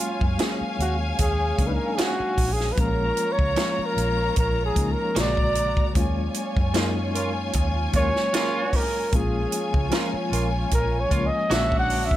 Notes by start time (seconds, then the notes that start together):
Already playing: F#3 G#3 A#3 C#4 F4 C#5 F5 G#5
0.21 F#2, kick
0.38 F#3 G#3 A#3 C#4 F4 G#4, snare, closed hi-hat
0.61 muted fingered electric bass stroke
0.79 D#2 F#4, closed hi-hat
1.19 D#2 G#4, kick, closed hi-hat
1.58 C#2 F#3 G#3 A#3 C#4 D4, kick, closed hi-hat
1.67 D#4 B4
1.74 A#4
1.98 F#3 C#4 F4 F#4 G#4, snare, closed hi-hat
2.20 muted fingered electric bass stroke
2.38 A#1, kick, open hi-hat
2.53 G#4
2.60 snare
2.72 F3 B4
2.77 A#1 G#3 A#3 C#4 F4 A#4 C#5 A#5, kick, closed hi-hat
3.17 closed hi-hat
3.32 C#5
3.39 C#2, kick
3.56 F3 G#3 A#3 C#4 F4 G#4 C#5, snare, closed hi-hat
3.79 muted fingered electric bass stroke
3.86 A#4
3.97 A#1, closed hi-hat
4.36 A#1 A#4, kick, closed hi-hat
4.65 G#4
4.74 C#2 F3 G#3 A#3 C#4 D#4, kick, closed hi-hat
4.92 A#4
5.14 A#1 C#3 D3 G#3 A#3 D4 F#4 G#4 C#5 D5 A#5, snare, closed hi-hat
5.19 D5
5.37 kick
5.55 closed hi-hat
5.77 kick
5.93 D#2 F#3 G#3 A#3 C#4 F4 C#5 G#5, kick, closed hi-hat
6.34 closed hi-hat
6.57 F#2, kick
6.74 F#3 G#3 A#3 C#4 D#4 F4 G#4, snare, closed hi-hat
7.14 A#3 C#4 F4, closed hi-hat
7.53 D#2, kick, closed hi-hat
7.92 D#2 F#3 G#3 A#3 C#4 F4, kick, closed hi-hat
7.96 C#5
8.16 snare
8.33 F#3 A#3 C#4 F4 G#4, snare, closed hi-hat
8.73 A#4, kick, open hi-hat
9.12 A#1 F3 G#3 A#3 C#4 F4 C#5 G#5, kick, closed hi-hat
9.16 G#4
9.52 closed hi-hat
9.74 C#2, kick
9.90 F3 G#3 A#3 C#4 F4 A#4, snare, closed hi-hat
10.13 muted fingered electric bass stroke
10.32 A#1 A#3 C#4 F4, closed hi-hat
10.71 A#1 A#4, kick, closed hi-hat
11.00 C#5
11.09 C#2 F3 G#3 A#3 C#4 F4, kick, closed hi-hat
11.27 D#5
11.49 A#1 D3 F#3 G#3 A#3 C#4 D4 F#4 G#4 C#5 F#5, snare, closed hi-hat
11.53 E5
11.72 kick
11.79 F#5
11.90 open hi-hat
12.05 E5
12.11 kick